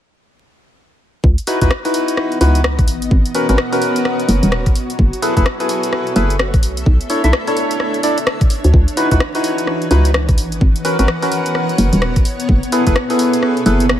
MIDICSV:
0, 0, Header, 1, 5, 480
1, 0, Start_track
1, 0, Key_signature, 4, "minor"
1, 0, Tempo, 468750
1, 1268, Time_signature, 4, 2, 24, 8
1, 14334, End_track
2, 0, Start_track
2, 0, Title_t, "Ambient pad"
2, 0, Program_c, 0, 92
2, 1269, Note_on_c, 0, 59, 79
2, 1453, Note_on_c, 0, 75, 95
2, 2150, Note_on_c, 0, 78, 83
2, 3460, Note_on_c, 0, 66, 84
2, 3869, Note_off_c, 0, 78, 0
2, 3871, Note_off_c, 0, 75, 0
2, 3951, Note_on_c, 0, 73, 76
2, 5359, Note_on_c, 0, 69, 89
2, 5646, Note_off_c, 0, 73, 0
2, 5647, Note_off_c, 0, 66, 0
2, 5754, Note_on_c, 0, 76, 82
2, 6787, Note_on_c, 0, 62, 72
2, 7002, Note_on_c, 0, 73, 89
2, 7673, Note_off_c, 0, 69, 0
2, 7674, Note_off_c, 0, 59, 0
2, 8947, Note_on_c, 0, 52, 72
2, 8948, Note_off_c, 0, 62, 0
2, 8948, Note_off_c, 0, 76, 0
2, 9726, Note_off_c, 0, 73, 0
2, 9833, Note_on_c, 0, 75, 81
2, 9834, Note_on_c, 0, 78, 84
2, 10866, Note_on_c, 0, 59, 75
2, 10867, Note_off_c, 0, 52, 0
2, 11046, Note_on_c, 0, 73, 82
2, 11495, Note_off_c, 0, 75, 0
2, 12762, Note_on_c, 0, 69, 79
2, 13325, Note_off_c, 0, 73, 0
2, 13327, Note_off_c, 0, 78, 0
2, 13433, Note_on_c, 0, 76, 75
2, 14334, Note_off_c, 0, 59, 0
2, 14334, Note_off_c, 0, 69, 0
2, 14334, Note_off_c, 0, 76, 0
2, 14334, End_track
3, 0, Start_track
3, 0, Title_t, "Synth stab"
3, 0, Program_c, 1, 62
3, 1508, Note_on_c, 1, 63, 86
3, 1508, Note_on_c, 1, 64, 78
3, 1508, Note_on_c, 1, 66, 79
3, 1508, Note_on_c, 1, 71, 92
3, 1633, Note_off_c, 1, 63, 0
3, 1633, Note_off_c, 1, 64, 0
3, 1633, Note_off_c, 1, 66, 0
3, 1633, Note_off_c, 1, 71, 0
3, 1654, Note_on_c, 1, 63, 95
3, 1654, Note_on_c, 1, 64, 83
3, 1655, Note_on_c, 1, 66, 88
3, 1655, Note_on_c, 1, 71, 104
3, 1749, Note_off_c, 1, 63, 0
3, 1749, Note_off_c, 1, 64, 0
3, 1749, Note_off_c, 1, 66, 0
3, 1750, Note_off_c, 1, 71, 0
3, 1894, Note_on_c, 1, 63, 82
3, 1895, Note_on_c, 1, 64, 71
3, 1895, Note_on_c, 1, 66, 68
3, 1895, Note_on_c, 1, 71, 88
3, 2445, Note_off_c, 1, 63, 0
3, 2445, Note_off_c, 1, 66, 0
3, 2445, Note_off_c, 1, 71, 0
3, 2446, Note_off_c, 1, 64, 0
3, 2467, Note_on_c, 1, 63, 77
3, 2467, Note_on_c, 1, 64, 69
3, 2467, Note_on_c, 1, 66, 73
3, 2468, Note_on_c, 1, 71, 86
3, 2672, Note_off_c, 1, 63, 0
3, 2672, Note_off_c, 1, 64, 0
3, 2672, Note_off_c, 1, 66, 0
3, 2672, Note_off_c, 1, 71, 0
3, 3427, Note_on_c, 1, 66, 75
3, 3428, Note_on_c, 1, 61, 82
3, 3428, Note_on_c, 1, 70, 75
3, 3428, Note_on_c, 1, 71, 92
3, 3553, Note_off_c, 1, 61, 0
3, 3553, Note_off_c, 1, 66, 0
3, 3553, Note_off_c, 1, 70, 0
3, 3553, Note_off_c, 1, 71, 0
3, 3574, Note_on_c, 1, 61, 80
3, 3574, Note_on_c, 1, 66, 70
3, 3574, Note_on_c, 1, 70, 72
3, 3574, Note_on_c, 1, 71, 89
3, 3669, Note_off_c, 1, 61, 0
3, 3669, Note_off_c, 1, 66, 0
3, 3669, Note_off_c, 1, 70, 0
3, 3669, Note_off_c, 1, 71, 0
3, 3814, Note_on_c, 1, 61, 83
3, 3814, Note_on_c, 1, 66, 81
3, 3814, Note_on_c, 1, 70, 78
3, 3814, Note_on_c, 1, 71, 93
3, 4856, Note_off_c, 1, 61, 0
3, 4856, Note_off_c, 1, 66, 0
3, 4856, Note_off_c, 1, 70, 0
3, 4856, Note_off_c, 1, 71, 0
3, 5348, Note_on_c, 1, 64, 85
3, 5348, Note_on_c, 1, 68, 81
3, 5348, Note_on_c, 1, 69, 77
3, 5348, Note_on_c, 1, 71, 100
3, 5473, Note_off_c, 1, 64, 0
3, 5473, Note_off_c, 1, 68, 0
3, 5473, Note_off_c, 1, 69, 0
3, 5473, Note_off_c, 1, 71, 0
3, 5494, Note_on_c, 1, 64, 97
3, 5494, Note_on_c, 1, 68, 89
3, 5494, Note_on_c, 1, 69, 89
3, 5494, Note_on_c, 1, 71, 100
3, 5589, Note_off_c, 1, 64, 0
3, 5589, Note_off_c, 1, 68, 0
3, 5589, Note_off_c, 1, 69, 0
3, 5589, Note_off_c, 1, 71, 0
3, 5735, Note_on_c, 1, 69, 75
3, 5735, Note_on_c, 1, 71, 86
3, 5736, Note_on_c, 1, 64, 75
3, 5736, Note_on_c, 1, 68, 72
3, 6286, Note_off_c, 1, 64, 0
3, 6286, Note_off_c, 1, 68, 0
3, 6286, Note_off_c, 1, 69, 0
3, 6286, Note_off_c, 1, 71, 0
3, 6308, Note_on_c, 1, 64, 80
3, 6308, Note_on_c, 1, 68, 70
3, 6308, Note_on_c, 1, 69, 71
3, 6308, Note_on_c, 1, 71, 91
3, 6512, Note_off_c, 1, 68, 0
3, 6512, Note_off_c, 1, 69, 0
3, 6513, Note_off_c, 1, 64, 0
3, 6513, Note_off_c, 1, 71, 0
3, 7268, Note_on_c, 1, 62, 82
3, 7268, Note_on_c, 1, 64, 74
3, 7268, Note_on_c, 1, 69, 76
3, 7268, Note_on_c, 1, 73, 92
3, 7393, Note_off_c, 1, 62, 0
3, 7393, Note_off_c, 1, 64, 0
3, 7393, Note_off_c, 1, 69, 0
3, 7393, Note_off_c, 1, 73, 0
3, 7416, Note_on_c, 1, 62, 79
3, 7416, Note_on_c, 1, 64, 73
3, 7416, Note_on_c, 1, 69, 73
3, 7416, Note_on_c, 1, 76, 88
3, 7510, Note_off_c, 1, 62, 0
3, 7510, Note_off_c, 1, 64, 0
3, 7510, Note_off_c, 1, 69, 0
3, 7510, Note_off_c, 1, 76, 0
3, 7654, Note_on_c, 1, 64, 75
3, 7655, Note_on_c, 1, 62, 84
3, 7655, Note_on_c, 1, 69, 82
3, 7655, Note_on_c, 1, 73, 93
3, 8209, Note_off_c, 1, 62, 0
3, 8209, Note_off_c, 1, 64, 0
3, 8209, Note_off_c, 1, 69, 0
3, 8209, Note_off_c, 1, 73, 0
3, 8228, Note_on_c, 1, 62, 87
3, 8228, Note_on_c, 1, 69, 79
3, 8228, Note_on_c, 1, 74, 95
3, 8229, Note_on_c, 1, 64, 82
3, 8376, Note_off_c, 1, 62, 0
3, 8376, Note_off_c, 1, 64, 0
3, 8376, Note_off_c, 1, 69, 0
3, 8376, Note_off_c, 1, 74, 0
3, 9186, Note_on_c, 1, 63, 89
3, 9186, Note_on_c, 1, 64, 79
3, 9186, Note_on_c, 1, 66, 77
3, 9186, Note_on_c, 1, 71, 97
3, 9312, Note_off_c, 1, 63, 0
3, 9312, Note_off_c, 1, 64, 0
3, 9312, Note_off_c, 1, 66, 0
3, 9312, Note_off_c, 1, 71, 0
3, 9334, Note_on_c, 1, 63, 91
3, 9334, Note_on_c, 1, 64, 83
3, 9334, Note_on_c, 1, 66, 86
3, 9334, Note_on_c, 1, 71, 101
3, 9429, Note_off_c, 1, 63, 0
3, 9429, Note_off_c, 1, 64, 0
3, 9429, Note_off_c, 1, 66, 0
3, 9429, Note_off_c, 1, 71, 0
3, 9574, Note_on_c, 1, 63, 80
3, 9574, Note_on_c, 1, 64, 70
3, 9574, Note_on_c, 1, 66, 72
3, 9574, Note_on_c, 1, 71, 90
3, 10125, Note_off_c, 1, 63, 0
3, 10125, Note_off_c, 1, 64, 0
3, 10125, Note_off_c, 1, 66, 0
3, 10125, Note_off_c, 1, 71, 0
3, 10147, Note_on_c, 1, 63, 80
3, 10147, Note_on_c, 1, 64, 73
3, 10148, Note_on_c, 1, 66, 70
3, 10148, Note_on_c, 1, 71, 88
3, 10352, Note_off_c, 1, 63, 0
3, 10352, Note_off_c, 1, 64, 0
3, 10352, Note_off_c, 1, 66, 0
3, 10352, Note_off_c, 1, 71, 0
3, 11107, Note_on_c, 1, 61, 80
3, 11107, Note_on_c, 1, 70, 77
3, 11108, Note_on_c, 1, 66, 73
3, 11108, Note_on_c, 1, 71, 90
3, 11232, Note_off_c, 1, 61, 0
3, 11232, Note_off_c, 1, 70, 0
3, 11233, Note_off_c, 1, 66, 0
3, 11233, Note_off_c, 1, 71, 0
3, 11254, Note_on_c, 1, 61, 79
3, 11254, Note_on_c, 1, 66, 71
3, 11254, Note_on_c, 1, 70, 75
3, 11254, Note_on_c, 1, 71, 86
3, 11349, Note_off_c, 1, 61, 0
3, 11349, Note_off_c, 1, 66, 0
3, 11349, Note_off_c, 1, 70, 0
3, 11349, Note_off_c, 1, 71, 0
3, 11494, Note_on_c, 1, 61, 86
3, 11494, Note_on_c, 1, 66, 80
3, 11494, Note_on_c, 1, 70, 79
3, 11494, Note_on_c, 1, 71, 97
3, 12536, Note_off_c, 1, 66, 0
3, 12536, Note_off_c, 1, 70, 0
3, 12536, Note_off_c, 1, 71, 0
3, 12537, Note_off_c, 1, 61, 0
3, 13028, Note_on_c, 1, 64, 91
3, 13028, Note_on_c, 1, 69, 80
3, 13029, Note_on_c, 1, 68, 79
3, 13029, Note_on_c, 1, 71, 96
3, 13153, Note_off_c, 1, 64, 0
3, 13153, Note_off_c, 1, 68, 0
3, 13153, Note_off_c, 1, 69, 0
3, 13153, Note_off_c, 1, 71, 0
3, 13175, Note_on_c, 1, 64, 90
3, 13175, Note_on_c, 1, 69, 90
3, 13175, Note_on_c, 1, 71, 102
3, 13176, Note_on_c, 1, 68, 90
3, 13270, Note_off_c, 1, 64, 0
3, 13270, Note_off_c, 1, 68, 0
3, 13270, Note_off_c, 1, 69, 0
3, 13270, Note_off_c, 1, 71, 0
3, 13415, Note_on_c, 1, 64, 76
3, 13415, Note_on_c, 1, 68, 73
3, 13415, Note_on_c, 1, 69, 73
3, 13415, Note_on_c, 1, 71, 89
3, 13966, Note_off_c, 1, 64, 0
3, 13966, Note_off_c, 1, 68, 0
3, 13966, Note_off_c, 1, 69, 0
3, 13966, Note_off_c, 1, 71, 0
3, 13988, Note_on_c, 1, 64, 76
3, 13988, Note_on_c, 1, 68, 71
3, 13988, Note_on_c, 1, 71, 85
3, 13989, Note_on_c, 1, 69, 75
3, 14192, Note_off_c, 1, 64, 0
3, 14193, Note_off_c, 1, 68, 0
3, 14193, Note_off_c, 1, 69, 0
3, 14193, Note_off_c, 1, 71, 0
3, 14334, End_track
4, 0, Start_track
4, 0, Title_t, "FM bass"
4, 0, Program_c, 2, 39
4, 1267, Note_on_c, 2, 37, 94
4, 1392, Note_off_c, 2, 37, 0
4, 1654, Note_on_c, 2, 37, 78
4, 1733, Note_off_c, 2, 37, 0
4, 2467, Note_on_c, 2, 37, 100
4, 2946, Note_on_c, 2, 32, 98
4, 2961, Note_off_c, 2, 37, 0
4, 3159, Note_off_c, 2, 32, 0
4, 3186, Note_on_c, 2, 32, 97
4, 3312, Note_off_c, 2, 32, 0
4, 3574, Note_on_c, 2, 32, 83
4, 3653, Note_off_c, 2, 32, 0
4, 4388, Note_on_c, 2, 30, 99
4, 4512, Note_off_c, 2, 30, 0
4, 4535, Note_on_c, 2, 27, 101
4, 4846, Note_off_c, 2, 27, 0
4, 5108, Note_on_c, 2, 30, 97
4, 5233, Note_off_c, 2, 30, 0
4, 5495, Note_on_c, 2, 30, 80
4, 5574, Note_off_c, 2, 30, 0
4, 6309, Note_on_c, 2, 30, 101
4, 6788, Note_on_c, 2, 35, 99
4, 6804, Note_off_c, 2, 30, 0
4, 7000, Note_off_c, 2, 35, 0
4, 7028, Note_on_c, 2, 35, 94
4, 7152, Note_off_c, 2, 35, 0
4, 7414, Note_on_c, 2, 35, 84
4, 7493, Note_off_c, 2, 35, 0
4, 8853, Note_on_c, 2, 38, 85
4, 8933, Note_off_c, 2, 38, 0
4, 8946, Note_on_c, 2, 37, 99
4, 9072, Note_off_c, 2, 37, 0
4, 9333, Note_on_c, 2, 37, 79
4, 9413, Note_off_c, 2, 37, 0
4, 10146, Note_on_c, 2, 37, 104
4, 10626, Note_on_c, 2, 32, 96
4, 10642, Note_off_c, 2, 37, 0
4, 10839, Note_off_c, 2, 32, 0
4, 10866, Note_on_c, 2, 32, 94
4, 10992, Note_off_c, 2, 32, 0
4, 11255, Note_on_c, 2, 32, 80
4, 11334, Note_off_c, 2, 32, 0
4, 12067, Note_on_c, 2, 30, 102
4, 12192, Note_off_c, 2, 30, 0
4, 12214, Note_on_c, 2, 27, 97
4, 12525, Note_off_c, 2, 27, 0
4, 12787, Note_on_c, 2, 30, 96
4, 12912, Note_off_c, 2, 30, 0
4, 13174, Note_on_c, 2, 30, 77
4, 13254, Note_off_c, 2, 30, 0
4, 13988, Note_on_c, 2, 30, 105
4, 14334, Note_off_c, 2, 30, 0
4, 14334, End_track
5, 0, Start_track
5, 0, Title_t, "Drums"
5, 1267, Note_on_c, 9, 36, 111
5, 1370, Note_off_c, 9, 36, 0
5, 1414, Note_on_c, 9, 42, 47
5, 1506, Note_on_c, 9, 46, 105
5, 1516, Note_off_c, 9, 42, 0
5, 1609, Note_off_c, 9, 46, 0
5, 1653, Note_on_c, 9, 42, 61
5, 1654, Note_on_c, 9, 36, 59
5, 1746, Note_on_c, 9, 37, 115
5, 1755, Note_off_c, 9, 42, 0
5, 1757, Note_off_c, 9, 36, 0
5, 1849, Note_off_c, 9, 37, 0
5, 1894, Note_on_c, 9, 46, 57
5, 1986, Note_off_c, 9, 46, 0
5, 1986, Note_on_c, 9, 46, 98
5, 2089, Note_off_c, 9, 46, 0
5, 2133, Note_on_c, 9, 42, 66
5, 2225, Note_on_c, 9, 37, 67
5, 2235, Note_off_c, 9, 42, 0
5, 2328, Note_off_c, 9, 37, 0
5, 2374, Note_on_c, 9, 42, 34
5, 2467, Note_on_c, 9, 46, 96
5, 2476, Note_off_c, 9, 42, 0
5, 2569, Note_off_c, 9, 46, 0
5, 2613, Note_on_c, 9, 42, 63
5, 2706, Note_on_c, 9, 37, 116
5, 2715, Note_off_c, 9, 42, 0
5, 2808, Note_off_c, 9, 37, 0
5, 2854, Note_on_c, 9, 36, 102
5, 2854, Note_on_c, 9, 37, 30
5, 2854, Note_on_c, 9, 42, 50
5, 2946, Note_on_c, 9, 46, 105
5, 2956, Note_off_c, 9, 36, 0
5, 2956, Note_off_c, 9, 37, 0
5, 2956, Note_off_c, 9, 42, 0
5, 3048, Note_off_c, 9, 46, 0
5, 3093, Note_on_c, 9, 42, 60
5, 3187, Note_on_c, 9, 36, 113
5, 3196, Note_off_c, 9, 42, 0
5, 3289, Note_off_c, 9, 36, 0
5, 3333, Note_on_c, 9, 42, 44
5, 3425, Note_on_c, 9, 46, 100
5, 3436, Note_off_c, 9, 42, 0
5, 3528, Note_off_c, 9, 46, 0
5, 3574, Note_on_c, 9, 37, 30
5, 3574, Note_on_c, 9, 42, 57
5, 3666, Note_off_c, 9, 37, 0
5, 3666, Note_on_c, 9, 37, 119
5, 3676, Note_off_c, 9, 42, 0
5, 3768, Note_off_c, 9, 37, 0
5, 3815, Note_on_c, 9, 46, 60
5, 3908, Note_off_c, 9, 46, 0
5, 3908, Note_on_c, 9, 46, 94
5, 4010, Note_off_c, 9, 46, 0
5, 4055, Note_on_c, 9, 42, 61
5, 4149, Note_on_c, 9, 37, 66
5, 4157, Note_off_c, 9, 42, 0
5, 4251, Note_off_c, 9, 37, 0
5, 4296, Note_on_c, 9, 42, 33
5, 4389, Note_on_c, 9, 46, 91
5, 4398, Note_off_c, 9, 42, 0
5, 4491, Note_off_c, 9, 46, 0
5, 4536, Note_on_c, 9, 42, 60
5, 4628, Note_on_c, 9, 37, 120
5, 4638, Note_off_c, 9, 42, 0
5, 4731, Note_off_c, 9, 37, 0
5, 4775, Note_on_c, 9, 36, 102
5, 4776, Note_on_c, 9, 37, 31
5, 4776, Note_on_c, 9, 42, 48
5, 4869, Note_on_c, 9, 46, 107
5, 4877, Note_off_c, 9, 36, 0
5, 4878, Note_off_c, 9, 37, 0
5, 4878, Note_off_c, 9, 42, 0
5, 4972, Note_off_c, 9, 46, 0
5, 5016, Note_on_c, 9, 42, 59
5, 5108, Note_on_c, 9, 36, 111
5, 5119, Note_off_c, 9, 42, 0
5, 5211, Note_off_c, 9, 36, 0
5, 5256, Note_on_c, 9, 42, 45
5, 5350, Note_on_c, 9, 46, 99
5, 5358, Note_off_c, 9, 42, 0
5, 5453, Note_off_c, 9, 46, 0
5, 5495, Note_on_c, 9, 36, 62
5, 5497, Note_on_c, 9, 42, 54
5, 5588, Note_on_c, 9, 37, 122
5, 5598, Note_off_c, 9, 36, 0
5, 5599, Note_off_c, 9, 42, 0
5, 5691, Note_off_c, 9, 37, 0
5, 5736, Note_on_c, 9, 46, 56
5, 5827, Note_off_c, 9, 46, 0
5, 5827, Note_on_c, 9, 46, 96
5, 5930, Note_off_c, 9, 46, 0
5, 5974, Note_on_c, 9, 42, 61
5, 6068, Note_on_c, 9, 37, 64
5, 6076, Note_off_c, 9, 42, 0
5, 6170, Note_off_c, 9, 37, 0
5, 6215, Note_on_c, 9, 42, 32
5, 6306, Note_on_c, 9, 46, 92
5, 6317, Note_off_c, 9, 42, 0
5, 6409, Note_off_c, 9, 46, 0
5, 6455, Note_on_c, 9, 42, 62
5, 6548, Note_on_c, 9, 37, 118
5, 6557, Note_off_c, 9, 42, 0
5, 6650, Note_off_c, 9, 37, 0
5, 6695, Note_on_c, 9, 36, 104
5, 6695, Note_on_c, 9, 37, 30
5, 6695, Note_on_c, 9, 42, 49
5, 6787, Note_on_c, 9, 46, 103
5, 6797, Note_off_c, 9, 36, 0
5, 6798, Note_off_c, 9, 37, 0
5, 6798, Note_off_c, 9, 42, 0
5, 6890, Note_off_c, 9, 46, 0
5, 6935, Note_on_c, 9, 42, 56
5, 7028, Note_on_c, 9, 36, 118
5, 7037, Note_off_c, 9, 42, 0
5, 7130, Note_off_c, 9, 36, 0
5, 7174, Note_on_c, 9, 42, 44
5, 7266, Note_on_c, 9, 46, 95
5, 7277, Note_off_c, 9, 42, 0
5, 7369, Note_off_c, 9, 46, 0
5, 7414, Note_on_c, 9, 37, 28
5, 7414, Note_on_c, 9, 42, 60
5, 7507, Note_off_c, 9, 37, 0
5, 7507, Note_on_c, 9, 37, 116
5, 7516, Note_off_c, 9, 42, 0
5, 7609, Note_off_c, 9, 37, 0
5, 7654, Note_on_c, 9, 46, 55
5, 7748, Note_off_c, 9, 46, 0
5, 7748, Note_on_c, 9, 46, 88
5, 7850, Note_off_c, 9, 46, 0
5, 7893, Note_on_c, 9, 42, 63
5, 7986, Note_on_c, 9, 37, 63
5, 7995, Note_off_c, 9, 42, 0
5, 8088, Note_off_c, 9, 37, 0
5, 8133, Note_on_c, 9, 42, 32
5, 8226, Note_on_c, 9, 46, 94
5, 8235, Note_off_c, 9, 42, 0
5, 8328, Note_off_c, 9, 46, 0
5, 8373, Note_on_c, 9, 42, 62
5, 8466, Note_on_c, 9, 37, 115
5, 8475, Note_off_c, 9, 42, 0
5, 8568, Note_off_c, 9, 37, 0
5, 8612, Note_on_c, 9, 37, 29
5, 8612, Note_on_c, 9, 42, 47
5, 8613, Note_on_c, 9, 36, 105
5, 8705, Note_on_c, 9, 46, 100
5, 8715, Note_off_c, 9, 37, 0
5, 8715, Note_off_c, 9, 42, 0
5, 8716, Note_off_c, 9, 36, 0
5, 8807, Note_off_c, 9, 46, 0
5, 8851, Note_on_c, 9, 42, 59
5, 8946, Note_on_c, 9, 36, 110
5, 8953, Note_off_c, 9, 42, 0
5, 9048, Note_off_c, 9, 36, 0
5, 9092, Note_on_c, 9, 42, 48
5, 9186, Note_on_c, 9, 46, 95
5, 9195, Note_off_c, 9, 42, 0
5, 9288, Note_off_c, 9, 46, 0
5, 9332, Note_on_c, 9, 42, 61
5, 9333, Note_on_c, 9, 36, 59
5, 9424, Note_on_c, 9, 37, 113
5, 9435, Note_off_c, 9, 42, 0
5, 9436, Note_off_c, 9, 36, 0
5, 9527, Note_off_c, 9, 37, 0
5, 9572, Note_on_c, 9, 46, 54
5, 9666, Note_off_c, 9, 46, 0
5, 9666, Note_on_c, 9, 46, 92
5, 9768, Note_off_c, 9, 46, 0
5, 9813, Note_on_c, 9, 42, 64
5, 9906, Note_on_c, 9, 37, 59
5, 9916, Note_off_c, 9, 42, 0
5, 10008, Note_off_c, 9, 37, 0
5, 10053, Note_on_c, 9, 42, 33
5, 10145, Note_on_c, 9, 46, 92
5, 10155, Note_off_c, 9, 42, 0
5, 10248, Note_off_c, 9, 46, 0
5, 10292, Note_on_c, 9, 42, 66
5, 10386, Note_on_c, 9, 37, 115
5, 10395, Note_off_c, 9, 42, 0
5, 10489, Note_off_c, 9, 37, 0
5, 10533, Note_on_c, 9, 36, 101
5, 10534, Note_on_c, 9, 37, 28
5, 10534, Note_on_c, 9, 42, 53
5, 10627, Note_on_c, 9, 46, 99
5, 10636, Note_off_c, 9, 36, 0
5, 10636, Note_off_c, 9, 37, 0
5, 10636, Note_off_c, 9, 42, 0
5, 10729, Note_off_c, 9, 46, 0
5, 10774, Note_on_c, 9, 42, 58
5, 10866, Note_on_c, 9, 36, 106
5, 10876, Note_off_c, 9, 42, 0
5, 10969, Note_off_c, 9, 36, 0
5, 11014, Note_on_c, 9, 42, 50
5, 11107, Note_on_c, 9, 46, 99
5, 11117, Note_off_c, 9, 42, 0
5, 11210, Note_off_c, 9, 46, 0
5, 11255, Note_on_c, 9, 37, 27
5, 11255, Note_on_c, 9, 42, 63
5, 11347, Note_off_c, 9, 37, 0
5, 11347, Note_on_c, 9, 37, 107
5, 11357, Note_off_c, 9, 42, 0
5, 11449, Note_off_c, 9, 37, 0
5, 11494, Note_on_c, 9, 46, 55
5, 11588, Note_off_c, 9, 46, 0
5, 11588, Note_on_c, 9, 46, 99
5, 11690, Note_off_c, 9, 46, 0
5, 11734, Note_on_c, 9, 42, 64
5, 11827, Note_on_c, 9, 37, 58
5, 11836, Note_off_c, 9, 42, 0
5, 11929, Note_off_c, 9, 37, 0
5, 11974, Note_on_c, 9, 42, 36
5, 12067, Note_on_c, 9, 46, 94
5, 12077, Note_off_c, 9, 42, 0
5, 12169, Note_off_c, 9, 46, 0
5, 12213, Note_on_c, 9, 42, 67
5, 12307, Note_on_c, 9, 37, 107
5, 12316, Note_off_c, 9, 42, 0
5, 12409, Note_off_c, 9, 37, 0
5, 12454, Note_on_c, 9, 36, 102
5, 12454, Note_on_c, 9, 37, 29
5, 12454, Note_on_c, 9, 42, 52
5, 12546, Note_on_c, 9, 46, 109
5, 12556, Note_off_c, 9, 37, 0
5, 12556, Note_off_c, 9, 42, 0
5, 12557, Note_off_c, 9, 36, 0
5, 12648, Note_off_c, 9, 46, 0
5, 12694, Note_on_c, 9, 42, 62
5, 12788, Note_on_c, 9, 36, 106
5, 12796, Note_off_c, 9, 42, 0
5, 12890, Note_off_c, 9, 36, 0
5, 12935, Note_on_c, 9, 42, 49
5, 13028, Note_on_c, 9, 46, 106
5, 13037, Note_off_c, 9, 42, 0
5, 13130, Note_off_c, 9, 46, 0
5, 13174, Note_on_c, 9, 42, 62
5, 13175, Note_on_c, 9, 36, 58
5, 13267, Note_on_c, 9, 37, 115
5, 13277, Note_off_c, 9, 36, 0
5, 13277, Note_off_c, 9, 42, 0
5, 13370, Note_off_c, 9, 37, 0
5, 13414, Note_on_c, 9, 46, 57
5, 13507, Note_off_c, 9, 46, 0
5, 13507, Note_on_c, 9, 46, 102
5, 13609, Note_off_c, 9, 46, 0
5, 13655, Note_on_c, 9, 42, 66
5, 13748, Note_on_c, 9, 37, 61
5, 13757, Note_off_c, 9, 42, 0
5, 13851, Note_off_c, 9, 37, 0
5, 13895, Note_on_c, 9, 42, 36
5, 13987, Note_on_c, 9, 46, 99
5, 13998, Note_off_c, 9, 42, 0
5, 14090, Note_off_c, 9, 46, 0
5, 14135, Note_on_c, 9, 42, 67
5, 14228, Note_on_c, 9, 37, 109
5, 14237, Note_off_c, 9, 42, 0
5, 14330, Note_off_c, 9, 37, 0
5, 14334, End_track
0, 0, End_of_file